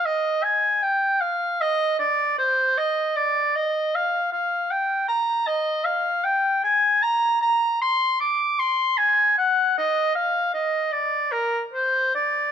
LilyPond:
\new Staff \with { instrumentName = "Oboe" } { \time 4/4 \key ees \major \tempo 4 = 77 ees''8 aes''8 g''8 f''8 ees''8 d''8 c''8 ees''8 | d''8 ees''8 f''8 f''8 g''8 bes''8 ees''8 f''8 | g''8 aes''8 bes''8 bes''8 c'''8 d'''8 c'''8 aes''8 | ges''8 ees''8 f''8 ees''8 d''8 bes'8 c''8 d''8 | }